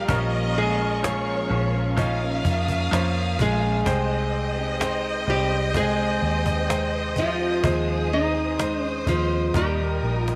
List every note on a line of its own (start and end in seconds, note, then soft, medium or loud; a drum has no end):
0.00 0.08 F3 medium
0.00 0.53 G3 medium
0.00 0.11 D#4 medium
0.00 0.11 G4 medium
0.00 0.57 G4 medium
0.00 3.82 A#4 medium
0.00 0.11 C#5 medium
0.00 3.82 F5 medium
0.08 1.46 A#1 medium
0.08 0.79 A#2 medium
0.08 0.98 F3 loud
0.08 0.79 F3 medium
0.08 0.80 A#3 medium
0.08 0.99 C#4 medium
0.08 0.80 C#4 medium
0.08 3.83 C#4 medium
0.08 0.79 F4 medium
0.08 0.99 A#4 loud
0.08 0.78 A#4 medium
0.08 1.03 D#5 loud
0.08 1.96 C#6 medium
0.08 cajon bass loud
0.58 2.42 G#3 medium
0.58 2.41 G#4 medium
0.79 1.03 A#3 soft
0.79 1.03 C#4 soft
0.79 1.03 F4 soft
0.79 1.03 A#4 medium
1.03 1.74 A#2 medium
1.03 1.48 F3 medium
1.03 1.74 F3 medium
1.03 1.74 A#3 medium
1.03 1.48 C#4 medium
1.03 1.74 C#4 medium
1.03 1.73 F4 medium
1.03 1.49 G#4 medium
1.03 1.72 A#4 medium
1.03 1.94 C#5 loud
1.03 cajon slap loud
1.50 2.41 A#1 loud
1.50 1.95 F3 medium
1.50 1.95 C#4 medium
1.50 1.96 G#4 medium
1.73 2.22 A#3 soft
1.73 2.21 C#4 medium
1.73 2.20 F4 medium
1.73 2.19 A#4 medium
1.97 2.87 F3 medium
1.97 2.87 C#4 medium
1.97 2.87 D#4 loud
1.97 3.86 F5 loud
1.97 3.84 D#6 medium
1.97 cajon bass medium
2.20 2.43 A#3 medium
2.20 2.44 C#4 medium
2.20 2.45 F4 medium
2.20 2.44 A#4 medium
2.44 2.89 F2 medium
2.44 2.68 A#3 medium
2.44 2.68 C#4 medium
2.44 2.67 F4 medium
2.44 2.66 A#4 medium
2.44 cajon bass medium
2.67 2.91 A#3 medium
2.67 2.92 C#4 medium
2.67 2.92 F4 medium
2.67 2.91 A#4 medium
2.67 cajon bass medium
2.91 3.36 F2 medium
2.91 3.39 A#2 medium
2.91 3.81 F3 medium
2.91 3.39 F3 medium
2.91 3.37 A#3 medium
2.91 3.81 C#4 medium
2.91 3.38 C#4 medium
2.91 3.40 F4 medium
2.91 3.40 A#4 loud
2.91 3.82 C5 medium
2.91 cajon slap loud
3.38 3.83 A#1 loud
3.38 5.24 G#3 medium
3.38 3.62 A#3 medium
3.38 3.63 C#4 medium
3.38 3.62 F4 medium
3.38 5.29 G#4 loud
3.38 3.61 A#4 medium
3.38 cajon bass medium
3.62 3.86 A#3 soft
3.62 3.86 C#4 soft
3.62 3.86 F4 medium
3.62 3.86 A#4 medium
3.86 5.23 C2 loud
3.86 4.56 C3 medium
3.86 5.23 C3 medium
3.86 4.75 G#3 loud
3.86 4.57 G#3 medium
3.86 4.57 C4 medium
3.86 4.56 D#4 medium
3.86 4.76 C5 loud
3.86 9.51 C5 medium
3.86 7.60 D#5 loud
3.86 4.76 G5 medium
3.86 7.60 G5 medium
3.86 10.35 D#6 medium
3.86 cajon bass loud
4.56 4.79 C4 medium
4.56 4.80 D#4 medium
4.56 4.80 G4 medium
4.79 5.50 C3 loud
4.79 5.25 G#3 medium
4.79 5.51 G#3 medium
4.79 5.51 C4 loud
4.79 5.51 D#4 loud
4.79 5.25 C5 loud
4.79 5.25 G5 medium
4.79 cajon slap loud
5.27 6.18 C2 medium
5.27 5.72 G3 medium
5.27 5.72 G4 medium
5.27 5.76 G4 medium
5.27 5.72 C5 medium
5.50 5.99 C4 soft
5.50 5.98 D#4 soft
5.50 5.96 G4 medium
5.74 6.64 G#3 medium
5.74 7.14 G#3 medium
5.74 7.22 G#4 loud
5.74 6.65 C5 medium
5.74 6.65 G5 medium
5.74 cajon bass medium
5.97 6.21 C4 soft
5.97 6.22 D#4 soft
5.97 6.21 G4 medium
6.21 7.60 D#2 medium
6.21 6.45 G#3 medium
6.21 6.46 C4 medium
6.21 6.45 D#4 medium
6.21 6.43 G4 medium
6.45 6.68 C4 soft
6.45 6.69 D#4 soft
6.45 6.69 G4 soft
6.45 cajon bass medium
6.68 7.16 C3 medium
6.68 7.59 G#3 medium
6.68 7.15 G#3 medium
6.68 7.16 C4 medium
6.68 7.17 D#4 medium
6.68 7.60 C5 medium
6.68 7.59 G5 medium
6.68 cajon slap loud
7.16 8.08 F3 medium
7.16 7.40 G#3 medium
7.16 7.40 C4 medium
7.16 7.40 D#4 medium
7.16 8.08 F4 medium
7.16 7.38 G4 medium
7.16 cajon bass medium
7.39 7.63 C4 soft
7.39 7.64 D#4 medium
7.39 7.63 G4 medium
7.63 9.03 D#2 loud
7.63 8.35 D#3 medium
7.63 9.03 D#3 medium
7.63 8.54 G#3 medium
7.63 8.35 G#3 medium
7.63 8.35 C4 medium
7.63 8.54 D#4 medium
7.63 8.35 D#4 medium
7.63 8.59 G#4 medium
7.63 8.33 G#4 medium
7.63 8.55 C5 loud
7.63 9.53 D#5 medium
7.63 cajon bass loud
8.13 8.82 D#4 medium
8.13 9.04 D#5 medium
8.34 8.59 C4 soft
8.34 8.59 D#4 soft
8.34 8.59 G#4 soft
8.58 9.30 D#3 medium
8.58 9.04 G#3 medium
8.58 9.31 G#3 medium
8.58 9.31 C4 medium
8.58 9.04 D#4 medium
8.58 9.31 D#4 medium
8.58 9.29 G#4 medium
8.58 9.55 C5 medium
8.58 9.05 C5 medium
8.58 cajon slap loud
8.82 9.08 C#4 medium
9.06 9.51 D#2 medium
9.06 9.53 F3 medium
9.06 9.52 G#3 medium
9.06 9.52 D#4 medium
9.06 9.56 F4 medium
9.06 9.52 C5 medium
9.06 cajon bass medium
9.30 9.55 C4 soft
9.30 9.55 D#4 soft
9.30 9.54 G#4 soft
9.54 9.99 D#2 medium
9.54 10.35 A#2 medium
9.54 9.78 D#3 medium
9.54 10.35 G3 medium
9.54 9.79 G3 medium
9.54 10.35 G3 medium
9.54 9.79 A#3 medium
9.54 10.35 D#4 medium
9.54 9.78 D#4 medium
9.54 9.76 G4 medium
9.54 10.21 G4 medium
9.54 10.35 A#4 medium
9.54 10.35 D#5 medium
9.54 10.35 G5 medium
9.54 cajon bass medium
9.54 cajon slap medium
9.78 10.02 A#3 soft
9.78 10.03 D#4 soft
9.78 10.02 G4 medium
10.02 10.35 A#1 medium
10.02 10.26 G3 medium
10.02 10.27 A#3 medium
10.02 10.27 D#4 medium
10.02 10.25 G4 medium
10.21 10.35 F4 medium
10.26 10.35 A#3 soft
10.26 10.35 D#4 soft
10.26 10.35 G4 soft
10.26 cajon slap medium